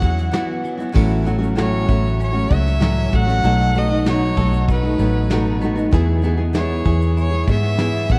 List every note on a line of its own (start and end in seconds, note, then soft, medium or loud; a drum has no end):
0.00 0.29 E2 loud
0.00 0.30 E3 medium
0.00 0.64 F#3 medium
0.00 0.31 B3 medium
0.00 0.32 E4 medium
0.00 0.33 F#4 medium
0.00 0.35 F#5 loud
0.00 kick medium
0.00 shaker medium
0.18 snare soft
0.18 shaker soft
0.31 0.79 E3 medium
0.31 0.79 B3 medium
0.31 0.79 E4 loud
0.31 0.76 F#4 loud
0.31 snare loud
0.31 shaker medium
0.64 0.95 F#3 medium
0.64 shaker soft
0.77 0.94 B3 soft
0.77 0.94 E4 medium
0.77 0.94 F#4 medium
0.77 shaker soft
0.92 1.85 A1 medium
0.92 1.25 A2 medium
0.92 1.25 E3 medium
0.92 1.22 F#3 medium
0.92 1.24 A3 loud
0.92 1.25 C#4 medium
0.92 1.26 F#4 loud
0.92 kick loud
0.92 crash medium
0.97 1.87 E4 medium
1.24 1.41 F#3 medium
1.24 1.40 A3 medium
1.24 1.39 C#4 medium
1.24 1.37 F#4 medium
1.24 shaker medium
1.38 1.56 F#3 soft
1.38 1.56 A3 soft
1.38 1.57 C#4 soft
1.38 1.56 F#4 medium
1.43 shaker medium
1.55 1.88 A2 medium
1.55 1.88 E3 medium
1.55 1.85 F#3 medium
1.55 1.86 A3 medium
1.55 1.87 C#4 medium
1.55 1.88 F#4 medium
1.55 snare loud
1.55 shaker medium
1.60 2.17 C#5 medium
1.86 2.47 A1 medium
1.86 2.34 F#3 medium
1.86 2.34 A3 medium
1.86 2.33 C#4 medium
1.86 3.50 E4 medium
1.86 2.31 F#4 medium
1.86 kick medium
1.86 shaker soft
2.20 2.81 C#4 medium
2.20 2.56 C#5 medium
2.20 shaker medium
2.32 2.47 F#3 soft
2.32 2.48 A3 soft
2.32 2.49 C#4 medium
2.32 2.49 F#4 soft
2.48 3.09 C#2 medium
2.48 2.79 F#3 medium
2.48 2.80 A3 medium
2.48 2.80 C#4 medium
2.48 2.81 F#4 medium
2.48 kick loud
2.48 shaker medium
2.54 3.17 E5 loud
2.67 snare soft
2.67 shaker medium
2.79 3.12 A2 medium
2.79 3.12 E3 medium
2.79 3.09 F#3 medium
2.79 3.11 A3 medium
2.79 3.12 C#4 medium
2.79 3.13 F#4 medium
2.79 snare loud
2.79 shaker medium
3.11 3.41 A1 medium
3.11 3.27 F#3 medium
3.11 3.28 A3 medium
3.11 3.27 C#4 medium
3.11 3.25 F#4 medium
3.11 kick medium
3.11 shaker soft
3.15 3.79 F#5 loud
3.26 3.42 F#3 soft
3.26 3.43 A3 medium
3.26 3.44 C#4 medium
3.26 3.43 F#4 medium
3.26 shaker soft
3.42 4.33 B1 medium
3.42 3.74 B2 medium
3.42 3.73 F#3 medium
3.42 3.74 A3 medium
3.42 3.75 D#4 medium
3.42 3.76 F#4 medium
3.42 4.36 A4 medium
3.42 shaker medium
3.74 3.90 F#3 medium
3.74 3.91 A3 medium
3.74 4.99 B3 medium
3.74 3.90 D#4 medium
3.74 3.88 F#4 medium
3.74 4.08 D#5 medium
3.74 shaker medium
3.89 4.06 A3 soft
3.89 4.07 D#4 soft
3.89 4.06 F#4 medium
4.05 4.37 B2 medium
4.05 4.35 F#3 medium
4.05 4.36 A3 medium
4.05 4.38 D#4 medium
4.05 4.38 F#4 medium
4.05 4.65 C#5 medium
4.05 snare loud
4.05 shaker medium
4.36 4.95 B1 medium
4.36 4.83 F#3 medium
4.36 4.84 A3 medium
4.36 4.84 D#4 medium
4.36 4.82 F#4 medium
4.36 5.93 A4 medium
4.36 kick medium
4.36 shaker soft
4.53 shaker medium
4.68 5.29 D#4 medium
4.68 5.59 B4 medium
4.68 kick medium
4.68 shaker medium
4.83 4.98 A3 soft
4.83 4.99 D#4 soft
4.83 4.99 F#4 medium
4.98 5.88 A1 medium
4.98 5.29 F#3 medium
4.98 5.30 A3 medium
4.98 5.61 B3 medium
4.98 5.31 D#4 medium
4.98 5.31 F#4 medium
4.98 shaker medium
5.30 5.61 B2 medium
5.30 5.60 F#3 medium
5.30 5.61 A3 medium
5.30 5.62 D#4 medium
5.30 5.63 F#4 medium
5.30 snare loud
5.30 shaker medium
5.61 5.77 F#3 medium
5.61 5.78 A3 medium
5.61 5.93 B3 medium
5.61 5.76 D#4 medium
5.61 5.74 F#4 medium
5.61 shaker soft
5.76 5.92 A3 soft
5.76 5.93 D#4 medium
5.76 5.92 F#4 medium
5.76 shaker medium
5.91 6.82 E2 medium
5.91 6.21 E3 medium
5.91 6.23 B3 medium
5.91 6.23 E4 loud
5.91 6.24 G#4 loud
5.91 kick loud
5.91 shaker medium
6.22 6.38 E3 medium
6.22 6.39 B3 medium
6.22 6.38 E4 medium
6.22 6.36 G#4 medium
6.22 shaker soft
6.37 6.53 B3 soft
6.37 6.54 E4 soft
6.37 6.54 G#4 medium
6.53 6.83 E3 medium
6.53 6.84 B3 medium
6.53 6.86 E4 medium
6.53 6.86 G#4 medium
6.53 7.14 C#5 medium
6.53 snare loud
6.53 shaker medium
6.84 7.44 E2 medium
6.84 7.32 E3 medium
6.84 7.32 B3 medium
6.84 7.32 E4 medium
6.84 7.29 G#4 medium
6.84 kick medium
6.84 shaker soft
7.01 shaker medium
7.17 7.79 E4 medium
7.17 7.47 C#5 medium
7.17 shaker medium
7.30 7.46 B3 soft
7.30 7.48 E4 medium
7.30 7.47 G#4 medium
7.46 8.11 G#2 medium
7.46 7.76 E3 medium
7.46 7.77 B3 medium
7.46 7.78 E4 medium
7.46 7.79 G#4 medium
7.46 kick medium
7.46 shaker medium
7.51 8.13 E5 loud
7.63 snare soft
7.77 8.07 E3 medium
7.77 8.08 B3 medium
7.77 8.09 E4 medium
7.77 8.10 G#4 medium
7.77 snare loud
7.77 shaker medium
8.08 8.19 B1 medium
8.08 8.19 E3 medium
8.08 8.19 B3 medium
8.08 8.19 E4 medium
8.08 8.19 G#4 medium
8.08 8.19 F#5 loud
8.08 kick medium
8.08 shaker soft